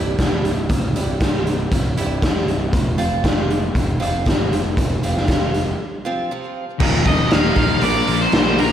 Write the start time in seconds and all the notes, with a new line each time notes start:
Already playing: C1 G2 C3 G3 E4
0.19 E1 G2 C3 G3 E4, kick, snare, closed hi-hat
0.43 C1, closed hi-hat
0.69 C1, kick, closed hi-hat
0.95 C1 G2 C3 G3 E4, closed hi-hat
1.20 C1 G2 C3 G3 E4, kick, snare, closed hi-hat
1.47 closed hi-hat
1.72 C1, kick, closed hi-hat
1.95 C1 G2 C3 G3 E4, closed hi-hat
2.22 E1 G2 C3 G3 E4, kick, snare, closed hi-hat
2.46 C1, closed hi-hat
2.73 F1, kick, closed hi-hat
2.97 F1 C3 F3 C4 F4, closed hi-hat
3.23 F1 C3 F3 C4 F4, kick, snare, closed hi-hat
3.50 closed hi-hat
3.74 F1, kick, closed hi-hat
4.00 F1 C3 F3 C4 F4, closed hi-hat
4.25 G1 C3 F3 C4 F4, kick, snare, closed hi-hat
4.52 F1, closed hi-hat
4.77 F1, kick, closed hi-hat
5.03 F1 C3 F3 C4 F4, closed hi-hat
5.17 snare
5.28 F1 C3 F3 C4 F4, kick, snare, closed hi-hat
5.54 closed hi-hat
6.05 C3 F3 C4 F4
6.31 C3 F3 C4 F4
6.79 D#1 D#2 A#2 D#3 F3 A#3 D#4, kick, crash
7.04 D#1 D#3 F3 A#3 D#4 D#5, kick, open hi-hat
7.31 D#1 D#3 F3 A#3 D#4 F5, snare, open hi-hat
7.56 D#1 D#2 A#2 D#3 F3 A#3 D#4, kick, open hi-hat
7.81 A#1 A#2 F3 A#3 D4 F4 A#4 D5, open hi-hat
8.07 A#1 A#2 F3 A#3 D4 F4 A#4, open hi-hat
8.22 C5
8.32 A#1 A#3 D4 F4 A#4, snare, open hi-hat
8.58 A#3 D4 F4 A#4, open hi-hat